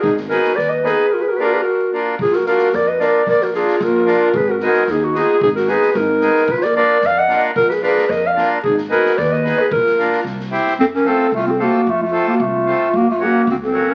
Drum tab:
SD |-oooo-o-|--------|-oooo-o-|-oooo-o-|
BD |o-------|--------|o-------|o-------|

SD |--ooo-o-|-oooo-oo|-o--o-o-|-oooo-o-|
BD |o-------|o-------|o-------|o-------|

SD |-oooo-o-|-ooooooo|--------|--------|
BD |o-------|o-------|--------|--------|

SD |--------|
BD |--------|